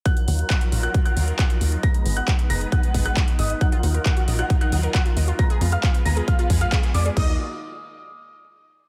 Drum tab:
CC |----------------|----------------|----------------|----------------|
HH |xxoxxxoxxxoxxxox|xxoxxxoxxxoxxxox|xxoxxxoxxxoxxxox|xxoxxxoxxxoxxxox|
CP |----x-------x---|----x-------x---|----x-------x---|----x-------x---|
BD |o---o---o---o---|o---o---o-o-o---|o---o---o---o---|o---o---o-o-o---|

CC |x---------------|
HH |----------------|
CP |----------------|
BD |o---------------|